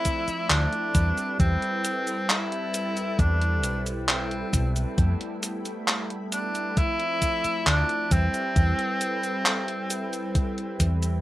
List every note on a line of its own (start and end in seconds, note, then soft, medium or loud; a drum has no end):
0.00 0.85 F3 medium
0.00 0.94 F3 medium
0.00 0.86 A3 medium
0.00 0.86 C4 medium
0.00 0.46 E4 loud
0.00 0.87 E4 medium
0.00 0.94 D5 medium
0.00 0.93 C6 medium
0.05 kick medium
0.05 closed hi-hat medium
0.05 cabasa medium
0.28 muted fingered electric bass stroke soft
0.28 closed hi-hat soft
0.28 cabasa soft
0.50 0.65 D2 loud
0.50 1.36 D4 loud
0.50 clap loud
0.50 closed hi-hat medium
0.50 cabasa soft
0.73 closed hi-hat soft
0.93 1.10 E2 medium
0.93 4.88 G3 medium
0.93 4.89 C4 medium
0.93 4.90 E4 loud
0.93 6.73 A4 medium
0.93 4.89 B4 medium
0.93 6.73 G5 medium
0.93 4.94 A5 medium
0.93 kick loud
0.93 closed hi-hat medium
0.93 cabasa medium
1.18 closed hi-hat soft
1.18 cabasa soft
1.40 1.55 E2 medium
1.40 2.25 C4 loud
1.40 kick loud
1.40 closed hi-hat medium
1.40 cabasa soft
1.62 closed hi-hat soft
1.85 closed hi-hat medium
1.85 cabasa medium
2.07 closed hi-hat soft
2.07 cabasa soft
2.29 3.21 E4 loud
2.29 clap loud
2.29 closed hi-hat medium
2.29 cabasa soft
2.52 closed hi-hat soft
2.74 closed hi-hat medium
2.74 cabasa medium
2.97 closed hi-hat soft
2.97 cabasa soft
3.19 3.63 E2 medium
3.19 3.82 D4 loud
3.19 kick loud
3.19 closed hi-hat medium
3.19 cabasa soft
3.41 closed hi-hat soft
3.63 4.42 B1 loud
3.63 closed hi-hat medium
3.63 cabasa medium
3.86 closed hi-hat soft
3.86 cabasa soft
4.08 4.72 C4 medium
4.08 clap loud
4.08 closed hi-hat medium
4.08 cabasa soft
4.31 closed hi-hat soft
4.53 4.84 B1 loud
4.53 kick loud
4.53 closed hi-hat medium
4.53 cabasa medium
4.76 closed hi-hat soft
4.76 cabasa soft
4.97 5.13 F2 loud
4.97 6.67 G3 medium
4.97 6.68 A3 medium
4.97 6.69 B3 medium
4.97 6.69 E4 medium
4.97 6.75 E5 medium
4.97 6.75 B5 medium
4.97 kick loud
4.97 closed hi-hat medium
4.97 cabasa soft
5.21 closed hi-hat soft
5.43 closed hi-hat medium
5.43 cabasa medium
5.65 closed hi-hat soft
5.65 cabasa soft
5.88 clap loud
5.88 closed hi-hat medium
5.88 cabasa soft
6.10 closed hi-hat soft
6.32 6.79 D4 loud
6.32 closed hi-hat medium
6.32 cabasa medium
6.55 closed hi-hat soft
6.55 cabasa soft
6.75 8.02 F3 medium
6.75 8.10 F3 medium
6.75 8.02 A3 medium
6.75 8.03 C4 medium
6.75 7.67 E4 loud
6.75 8.03 E4 medium
6.75 8.10 D5 medium
6.75 11.21 A5 medium
6.75 kick loud
6.75 closed hi-hat medium
6.75 cabasa soft
7.00 closed hi-hat soft
7.22 kick medium
7.22 closed hi-hat medium
7.22 cabasa medium
7.44 muted fingered electric bass stroke soft
7.44 closed hi-hat soft
7.44 cabasa soft
7.67 7.82 D2 loud
7.67 8.13 D4 loud
7.67 clap loud
7.67 closed hi-hat medium
7.67 cabasa soft
7.89 closed hi-hat soft
8.10 8.27 E2 medium
8.10 11.21 G3 loud
8.10 11.21 C4 loud
8.10 11.21 C4 medium
8.10 11.21 E4 loud
8.10 11.21 A4 medium
8.10 11.21 B4 medium
8.10 11.21 G5 medium
8.10 kick loud
8.10 closed hi-hat medium
8.10 cabasa medium
8.34 closed hi-hat soft
8.34 cabasa soft
8.56 8.72 E2 loud
8.56 kick loud
8.56 closed hi-hat medium
8.56 cabasa soft
8.79 closed hi-hat soft
9.01 closed hi-hat medium
9.01 cabasa medium
9.23 closed hi-hat soft
9.23 cabasa soft
9.46 clap loud
9.46 closed hi-hat medium
9.46 cabasa soft
9.68 closed hi-hat soft
9.90 closed hi-hat loud
9.90 cabasa medium
10.13 closed hi-hat soft
10.13 cabasa soft
10.35 kick loud
10.35 closed hi-hat medium
10.35 cabasa soft
10.58 closed hi-hat soft
10.80 11.21 E2 medium
10.80 kick medium
10.80 closed hi-hat medium
10.80 cabasa medium
11.03 closed hi-hat soft
11.03 cabasa soft